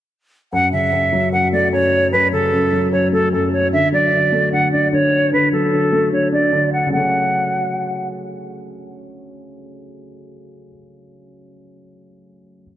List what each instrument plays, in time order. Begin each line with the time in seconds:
0.53 grand piano F#2, flute F#5
0.72 grand piano C#3, flute E5
0.92 grand piano F#2
1.13 grand piano F#3
1.33 grand piano F#2, flute F#5
1.53 grand piano A3, flute D5
1.72 grand piano F#2, flute C#5
2.12 grand piano F#2, flute B4
2.33 grand piano C#3, flute A4
2.52 grand piano F#2
2.73 grand piano F#3
2.92 grand piano F#2, flute C#5
3.12 grand piano A3, flute A4
3.32 grand piano F#2, flute A4
3.52 flute C#5
3.73 grand piano D3, flute E5
3.92 grand piano F#3, flute D5
4.12 grand piano D3
4.32 grand piano A3
4.52 grand piano D3, flute F#5
4.73 grand piano D4, flute D5
4.93 grand piano D3, flute C#5
5.32 grand piano D3, flute B4
5.52 grand piano F#3, flute A4
5.73 grand piano D3
5.92 grand piano A3
6.12 grand piano D3, flute C#5
6.32 grand piano D4, flute D5
6.52 grand piano D3
6.73 flute F#5
6.87 grand piano C#3 F#3
6.92 grand piano A3, flute F#5
6.98 grand piano C#4